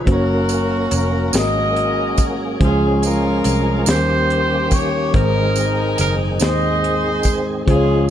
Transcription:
0.05 fingered electric bass F#1, tonewheel organ F#3 A#3 C#4 A4, tine electric piano A#3 C#4 F#4 C5, kick, closed hi-hat
0.11 horn section C#4 F#4 A#4, tonewheel organ A#4, tine electric piano C#5
0.49 closed hi-hat, tambourine
0.91 fingered electric bass F1, closed hi-hat, tambourine
0.96 horn section A#4
1.32 fingered electric bass G#1, tine electric piano G#2 G#3 C#4 F#4 A#4, tonewheel organ F#3 A#3 C#4 G#4, horn section F#4, snare, closed hi-hat, tambourine
1.37 horn section A#4 D#5
1.76 closed hi-hat
2.17 kick, closed hi-hat, tambourine
2.59 fingered electric bass C#2, tonewheel organ F3 G#3 C#4 G#4, tine electric piano F3 G#3 C#4 F4 C5, kick, closed hi-hat
2.64 horn section C#4 F4 G#4
2.68 tine electric piano C#5
3.03 horn section C#4 F4 A#4, closed hi-hat, tambourine
3.44 fingered electric bass C2, closed hi-hat, tambourine
3.86 fingered electric bass D#2, tine electric piano D#3 G3 C#4 D#4 G#4, tonewheel organ D#3 A#3 C#4 G4, horn section G4 C5, snare, closed hi-hat, tambourine
3.95 tine electric piano A#4
4.30 closed hi-hat
4.71 horn section C#5, kick, closed hi-hat, tambourine
5.13 fingered electric bass G#1, tine electric piano G#2 G#3 C4 D#4 C5, tonewheel organ D#3 G#3 A#3 G#4, horn section D#4 A#4, kick, closed hi-hat
5.21 tonewheel organ C4
5.56 closed hi-hat, tambourine
5.98 fingered electric bass F#1, horn section A#4, closed hi-hat, tambourine
6.39 fingered electric bass D#2, tine electric piano G#3 C4 D#4 C5, horn section G#4 C5 D#5, snare, closed hi-hat, tambourine
6.84 closed hi-hat
7.23 kick, closed hi-hat, tambourine
7.66 fingered electric bass C#2, tine electric piano C#3 G#3 C#4 F4 C5, tonewheel organ F3 G#3 C#4 G4, horn section C#4 F4 G#4, kick, closed hi-hat
7.72 tonewheel organ G#4, tine electric piano C#5

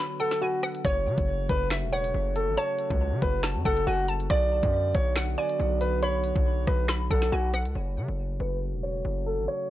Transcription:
Already playing: brass ensemble D3 F#3 B3 F#4
0.00 synth pluck B5
0.20 grand piano A4, synth pluck F#5
0.31 snare, closed hi-hat
0.41 grand piano F#4, synth pluck G#5
0.63 synth pluck F#5, cross-stick, closed hi-hat
0.75 closed hi-hat
0.85 808-style bass F#1, brass ensemble C#3 A3 F#4, synth pluck C#5, grand piano C#5, kick, closed hi-hat
1.06 808-style bass C#3
1.18 808-style bass F#1, kick, closed hi-hat
1.49 808-style bass F#1, grand piano B4, kick, closed hi-hat
1.70 synth pluck E5, finger snap, snare, closed hi-hat
1.82 808-style bass E1
1.92 grand piano C#5, synth pluck F#5
2.04 closed hi-hat
2.14 808-style bass F#1
2.36 grand piano A4, closed hi-hat
2.47 808-style bass G#1
2.57 grand piano C#5, synth pluck A5, closed hi-hat
2.79 closed hi-hat
2.90 808-style bass C#2, kick
3.12 808-style bass C#3
3.22 808-style bass F#1, grand piano B4, kick
3.43 synth pluck A5, finger snap, snare, closed hi-hat
3.55 808-style bass F#2
3.65 808-style bass F#1, grand piano A4, synth pluck F#5, kick
3.77 closed hi-hat
3.87 808-style bass F#1, grand piano F#4, synth pluck G#5
4.08 synth pluck A5, closed hi-hat
4.20 closed hi-hat
4.30 808-style bass B1, brass ensemble D3 F#3 B3 F#4, synth pluck D5, grand piano D5, kick, closed hi-hat
4.63 808-style bass F#2, kick, closed hi-hat
4.95 808-style bass B1, grand piano C#5, kick, closed hi-hat
5.16 synth pluck F#5, finger snap, snare, closed hi-hat
5.38 grand piano D5, synth pluck G#5
5.49 closed hi-hat
5.60 808-style bass B1
5.81 grand piano B4, closed hi-hat
6.03 grand piano C#5, synth pluck B5, closed hi-hat
6.24 closed hi-hat
6.36 808-style bass B1, kick
6.67 808-style bass B1, grand piano B4, kick, cross-stick
6.88 synth pluck B5, finger snap, snare, closed hi-hat
7.10 808-style bass B1, grand piano A4, synth pluck F#5, kick
7.22 snare, closed hi-hat
7.32 808-style bass B1, grand piano F#4, synth pluck G#5
7.54 synth pluck F#5, cross-stick, closed hi-hat
7.65 808-style bass C#2, closed hi-hat
7.75 808-style bass F#1, brass ensemble C#3 F#3 A3 F#4, grand piano C#5
7.97 808-style bass C#3
8.08 808-style bass F#1
8.40 808-style bass F#1, grand piano B4
8.73 808-style bass E1
8.83 grand piano C#5
9.05 808-style bass F#1
9.26 grand piano A4
9.38 808-style bass G#1
9.48 grand piano C#5

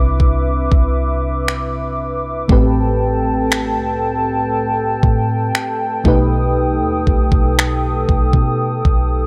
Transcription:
Already playing: 808-style bass C2, fm electric piano C3 C4 D4 E4 B4, analog synth pad B4 E5 D6
0.20 808-style bass C2, kick
0.72 808-style bass C2, kick
1.48 finger snap
2.48 808-style bass A1, fm electric piano A2 A3 C4 G4 B4, analog synth pad A4 G5 A5, kick
3.52 finger snap
3.76 808-style bass C2
5.03 808-style bass A2, kick
5.55 finger snap
6.04 808-style bass B1, fm electric piano B2 A3 D#4 G4 B4, analog synth pad A4 D#6, kick
6.81 808-style bass D#2
7.07 808-style bass B1, kick
7.32 808-style bass B1, kick
7.59 finger snap
8.09 808-style bass B1, kick
8.33 808-style bass B2, kick
8.85 808-style bass B1, kick

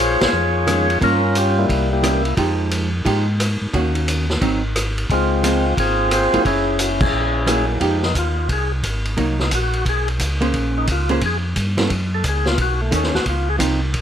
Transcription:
Already playing: tonewheel organ A#1 F4 G#4 C5 C#5
0.21 tonewheel organ A#1 F4 G#4 C#5, snare, ride
0.33 tonewheel organ F2
0.67 hollow-body jazz guitar D#3 G#3 C#4, cross-stick, hi-hat pedal, ride
0.90 ride
1.01 tonewheel organ G2 C#4 F4 A#4, hollow-body jazz guitar F3 A#3 C#4, kick, ride
1.35 tonewheel organ G4, hi-hat pedal, ride
1.58 tonewheel organ G3 A#3 E4
1.69 tonewheel organ C2, kick, ride
1.92 tonewheel organ A#3 E4 G4
2.03 hollow-body jazz guitar E3 A#3 C#4, cross-stick, hi-hat pedal, ride
2.25 ride
2.37 tonewheel organ F2, hollow-body jazz guitar F3 G#3 D#4 G4, kick, ride
2.71 hi-hat pedal, ride
3.05 tonewheel organ G#2, hollow-body jazz guitar F3 G#3 D#4 G4, kick, ride
3.40 cross-stick, hi-hat pedal, ride
3.61 tonewheel organ G#2
3.73 tonewheel organ D#2, hollow-body jazz guitar D#3 A#3 C#4 F#4, kick, ride
3.95 ride
4.08 hi-hat pedal, ride
4.30 snare
4.41 tonewheel organ G#1, hollow-body jazz guitar F#3 C4 D#4, kick, ride
4.76 cross-stick, hi-hat pedal, ride
4.98 ride
5.10 tonewheel organ C#2 G#3 C4 F4, kick, ride
5.43 hollow-body jazz guitar F3 G#3 C4, hi-hat pedal, ride
5.77 tonewheel organ G#1 C4 F4 G#4, kick, ride
6.11 tonewheel organ F4 G#4 C5, cross-stick, hi-hat pedal, ride
6.32 tonewheel organ G#1, hollow-body jazz guitar F#3 A#3 E4 G#4, ride
6.40 tonewheel organ G4
6.45 tonewheel organ F#1 C#4 E4 G#4, kick, ride
6.79 tonewheel organ F#4, hi-hat pedal, ride
7.01 tonewheel organ C#4 E4 G#4, kick, crash
7.13 tonewheel organ A#1
7.46 hollow-body jazz guitar F#3 A#3 E4 G#4, cross-stick, hi-hat pedal, ride
7.80 tonewheel organ F2, hollow-body jazz guitar F3 G#3 D#4 G4, kick, ride
8.03 tonewheel organ D#4, snare
8.15 tonewheel organ D#2 F4, kick, hi-hat pedal, ride
8.49 tonewheel organ C2 G#4, kick, ride
8.83 tonewheel organ G#1, kick, hi-hat pedal, ride
9.05 ride
9.17 tonewheel organ C2, hollow-body jazz guitar F#3 A#3 D#4, kick, ride
9.39 tonewheel organ D#4, snare
9.51 tonewheel organ A#1 F#4, kick, hi-hat pedal, ride
9.73 ride
9.85 tonewheel organ B1 G#4, kick, ride
10.08 ride
10.20 tonewheel organ C#2, kick, hi-hat pedal, ride
10.41 hollow-body jazz guitar A#3 C#4 G#4 C5, ride
10.54 tonewheel organ A#1, kick, ride
10.78 tonewheel organ D#4
10.87 tonewheel organ C#2, kick, hi-hat pedal, ride
10.92 tonewheel organ F4
11.09 hollow-body jazz guitar A#3 C#4 G#4 C5, ride
11.21 tonewheel organ F2, kick, ride
11.26 tonewheel organ G#4
11.56 tonewheel organ G2, kick, hi-hat pedal, ride
11.77 hollow-body jazz guitar E3 A3 C#4, snare, ride
11.90 tonewheel organ F#2, kick, ride
12.14 tonewheel organ A4
12.24 tonewheel organ C#2, kick, hi-hat pedal, ride
12.28 tonewheel organ G#4
12.45 tonewheel organ F4, snare
12.58 tonewheel organ B1, kick, ride
12.62 tonewheel organ F#4
12.81 tonewheel organ A3
12.91 tonewheel organ D#2, hollow-body jazz guitar D#3 A3 C#4, kick, hi-hat pedal, ride
12.96 tonewheel organ C#4
13.03 snare
13.14 tonewheel organ D#2 F#4, snare
13.26 tonewheel organ C#2 F4, kick, ride
13.50 tonewheel organ G#4
13.58 tonewheel organ C2, hollow-body jazz guitar F3 C4 D#4, kick, hi-hat pedal, ride
13.94 tonewheel organ A#1, kick, ride

